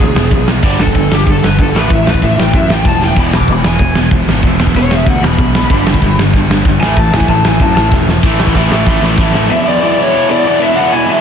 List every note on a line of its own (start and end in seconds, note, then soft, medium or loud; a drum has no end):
0.00 0.14 D2 medium
0.00 0.15 E2 medium
0.00 0.15 B2 medium
0.00 0.46 G#4 loud
0.16 0.29 E1 medium
0.16 0.30 E2 medium
0.16 0.30 B2 medium
0.16 snare loud
0.31 0.59 B1 medium
0.31 0.46 E2 medium
0.31 0.46 B2 medium
0.31 kick loud
0.31 crash medium
0.48 0.62 E2 medium
0.48 0.62 B2 medium
0.48 snare loud
0.62 0.77 G1 medium
0.62 0.78 G2 medium
0.62 0.78 D3 medium
0.62 0.79 G3 loud
0.62 kick loud
0.62 crash medium
0.80 0.93 G1 loud
0.80 0.94 G2 medium
0.80 0.94 D3 medium
0.80 1.11 A4 loud
0.80 snare loud
0.87 kick medium
0.95 1.09 G1 medium
0.95 1.09 G2 medium
0.95 1.10 D3 medium
0.95 kick loud
0.95 crash medium
1.12 1.25 G1 medium
1.12 1.26 G2 medium
1.12 1.26 D3 medium
1.12 1.28 G4 loud
1.12 snare loud
1.26 1.40 G1 medium
1.26 1.41 G2 medium
1.26 1.42 D3 medium
1.26 1.44 A4 loud
1.26 kick loud
1.26 crash soft
1.43 1.56 G1 medium
1.43 1.57 G2 medium
1.43 1.57 D3 medium
1.43 1.60 B4 medium
1.43 snare loud
1.59 1.72 G1 loud
1.59 1.73 G2 medium
1.59 1.73 D3 medium
1.59 1.75 A4 loud
1.59 kick loud
1.59 crash medium
1.75 1.88 A1 loud
1.75 1.89 A2 loud
1.75 1.89 E3 loud
1.75 1.90 A3 loud
1.75 1.92 B4 medium
1.75 snare loud
1.90 2.04 A1 medium
1.90 2.04 A2 medium
1.90 2.05 E3 loud
1.90 2.07 E5 medium
1.90 kick loud
1.90 crash medium
2.06 2.20 A1 loud
2.06 2.20 A2 medium
2.06 2.21 E3 medium
2.06 2.22 B4 medium
2.06 snare loud
2.14 kick medium
2.22 2.36 A1 loud
2.22 2.36 A2 medium
2.22 2.36 E3 loud
2.22 2.38 E5 loud
2.22 kick medium
2.22 crash medium
2.37 2.52 A1 medium
2.37 2.52 A2 medium
2.37 2.52 E3 medium
2.37 2.54 G5 loud
2.37 snare loud
2.53 2.67 F#2 medium
2.53 2.67 A2 medium
2.53 2.68 E3 medium
2.53 2.70 E5 loud
2.53 kick loud
2.53 crash medium
2.69 2.83 A1 medium
2.69 2.83 A2 medium
2.69 2.84 E3 medium
2.69 2.86 G5 medium
2.69 snare loud
2.85 3.12 E1 medium
2.85 3.00 A2 medium
2.85 3.00 E3 medium
2.85 3.01 A5 medium
2.85 kick loud
2.85 crash medium
3.01 3.15 A2 medium
3.01 3.15 E3 medium
3.01 3.18 G5 medium
3.01 snare medium
3.16 3.30 E1 medium
3.16 3.32 E2 medium
3.16 3.32 B2 loud
3.16 3.32 E3 loud
3.16 3.34 B5 medium
3.16 kick loud
3.16 crash medium
3.33 3.46 E1 loud
3.33 3.47 E2 medium
3.33 3.47 B2 medium
3.33 3.52 D6 loud
3.33 snare loud
3.40 kick medium
3.48 3.62 E1 loud
3.48 3.63 E2 medium
3.48 3.63 B2 medium
3.48 kick medium
3.48 crash medium
3.52 3.66 B5 medium
3.64 3.78 E1 medium
3.64 3.78 E2 medium
3.64 3.78 B2 medium
3.64 4.08 G#5 loud
3.64 snare loud
3.78 3.93 E1 medium
3.78 3.94 E2 medium
3.78 3.94 B2 medium
3.78 kick loud
3.78 crash medium
3.95 4.10 E1 medium
3.95 4.10 E2 medium
3.95 4.10 B2 medium
3.95 snare loud
4.11 4.25 E1 loud
4.11 4.26 E2 medium
4.11 4.26 B2 medium
4.11 kick loud
4.11 crash medium
4.28 4.41 G#1 medium
4.28 4.42 E2 medium
4.28 4.42 B2 medium
4.28 snare loud
4.43 4.57 E1 medium
4.43 4.58 E2 medium
4.43 4.58 B2 loud
4.43 5.71 E3 loud
4.43 kick loud
4.43 crash medium
4.59 4.73 E1 loud
4.59 4.74 E2 medium
4.59 4.74 B2 medium
4.59 snare loud
4.67 kick medium
4.74 4.88 E1 loud
4.74 4.90 E2 medium
4.74 4.90 B2 loud
4.74 4.93 C#5 medium
4.74 kick medium
4.74 crash medium
4.91 5.05 E1 medium
4.91 5.05 E2 medium
4.91 5.06 B2 medium
4.91 5.07 E5 loud
4.91 snare loud
5.06 5.20 D2 loud
5.06 5.21 E2 medium
5.06 5.21 B2 loud
5.06 5.23 F#5 loud
5.06 kick loud
5.06 crash medium
5.23 5.37 E1 loud
5.23 5.37 E2 medium
5.23 5.37 B2 medium
5.23 6.16 B5 loud
5.23 snare loud
5.38 5.66 B1 medium
5.38 5.53 E2 medium
5.38 5.53 B2 medium
5.38 kick loud
5.38 crash medium
5.55 5.69 E2 medium
5.55 5.69 B2 medium
5.55 snare loud
5.70 5.84 G1 medium
5.70 5.85 G2 loud
5.70 5.85 D3 loud
5.70 5.86 G3 loud
5.70 kick loud
5.70 crash medium
5.87 6.00 G1 loud
5.87 6.01 G2 medium
5.87 6.01 D3 medium
5.87 snare loud
5.94 kick medium
6.02 6.16 G1 medium
6.02 6.17 G2 medium
6.02 6.17 D3 medium
6.02 kick loud
6.02 crash medium
6.17 6.31 G1 medium
6.17 6.33 G2 medium
6.17 6.33 D3 medium
6.17 snare loud
6.33 6.47 G1 medium
6.33 6.49 G2 medium
6.33 6.49 D3 medium
6.33 kick loud
6.33 crash medium
6.50 6.63 G1 medium
6.50 6.65 G2 medium
6.50 6.65 D3 medium
6.50 snare loud
6.65 6.79 G1 loud
6.65 6.80 G2 medium
6.65 6.81 D3 medium
6.65 kick loud
6.65 crash medium
6.81 6.95 A1 loud
6.81 6.97 A2 loud
6.81 6.97 E3 loud
6.81 6.97 A3 loud
6.81 6.97 G#5 loud
6.81 snare loud
6.97 7.10 A1 medium
6.97 7.12 A2 medium
6.97 7.12 E3 loud
6.97 7.12 A5 medium
6.97 kick loud
6.97 crash medium
7.13 7.26 A1 loud
7.13 7.28 A2 medium
7.13 7.28 E3 loud
7.13 7.29 G#5 loud
7.13 snare loud
7.20 kick loud
7.28 7.42 A1 loud
7.28 7.43 A2 medium
7.28 7.44 E3 medium
7.28 7.44 A5 medium
7.28 kick medium
7.28 crash medium
7.45 7.58 A1 medium
7.45 7.59 A2 medium
7.45 7.59 E3 medium
7.45 7.61 G#5 loud
7.45 snare loud
7.60 7.74 F#2 loud
7.60 7.75 A2 medium
7.60 7.75 E3 medium
7.60 7.75 A5 loud
7.60 kick loud
7.60 crash medium
7.76 7.90 A1 medium
7.76 7.91 A2 medium
7.76 7.91 E3 medium
7.76 7.91 A5 loud
7.76 snare loud
7.92 8.19 E1 loud
7.92 8.06 A2 medium
7.92 8.07 E3 medium
7.92 kick loud
7.92 snare medium
8.08 8.22 A2 medium
8.08 8.22 E3 medium
8.08 snare medium
8.23 8.52 A1 medium
8.23 8.39 A2 loud
8.23 8.38 E3 loud
8.23 8.38 A3 loud
8.23 kick loud
8.23 crash loud
8.23 crash medium
8.39 8.54 A2 medium
8.39 8.54 E3 loud
8.39 8.55 A3 medium
8.39 snare loud
8.47 kick loud
8.55 8.70 A1 medium
8.55 8.71 A2 medium
8.55 8.71 E3 medium
8.55 8.70 A3 loud
8.55 kick loud
8.55 crash medium
8.71 8.85 A1 medium
8.71 8.86 A2 medium
8.71 8.86 E3 medium
8.71 8.87 A3 loud
8.71 snare loud
8.86 9.01 A1 loud
8.86 9.02 A2 medium
8.86 9.02 E3 medium
8.86 9.01 A3 medium
8.86 kick loud
8.86 snare medium
9.02 9.17 A1 medium
9.02 9.16 A2 medium
9.02 9.17 E3 medium
9.02 9.18 A3 medium
9.02 snare medium
9.18 9.33 A1 loud
9.18 9.32 A2 loud
9.18 9.32 E3 loud
9.18 9.31 A3 loud
9.18 kick loud
9.18 snare medium
9.32 9.48 A1 medium
9.32 9.49 A2 medium
9.32 9.49 E3 medium
9.32 9.48 A3 medium
9.32 snare loud
9.49 9.66 E2 loud
9.49 9.64 B2 loud
9.49 9.65 E3 loud
9.49 9.67 E5 loud
9.65 9.81 E2 medium
9.65 9.81 B2 medium
9.65 9.82 E3 loud
9.65 9.83 D5 medium
9.81 9.99 E2 loud
9.81 9.97 B2 loud
9.81 9.98 E3 loud
9.81 10.02 D5 medium
9.98 10.11 E2 medium
9.98 10.12 B2 medium
9.98 10.12 E3 loud
9.98 10.30 C#5 loud
10.13 10.28 E2 medium
10.13 10.28 B2 loud
10.13 10.27 E3 loud
10.28 10.43 E2 medium
10.28 10.44 B2 medium
10.28 10.44 E3 medium
10.28 10.62 D5 medium
10.44 10.60 E2 loud
10.44 10.59 B2 loud
10.44 10.58 E3 loud
10.60 10.75 E2 medium
10.60 10.76 B2 loud
10.60 10.76 E3 loud
10.60 10.78 E5 loud
10.76 10.92 E2 loud
10.76 10.92 B2 loud
10.76 10.91 E3 loud
10.76 10.93 F#5 loud
10.92 11.05 E2 medium
10.92 11.06 B2 loud
10.92 11.06 E3 loud
10.92 11.09 G#5 loud
11.06 11.21 E2 loud
11.06 11.21 B2 loud
11.06 11.21 E3 loud
11.06 11.21 E5 loud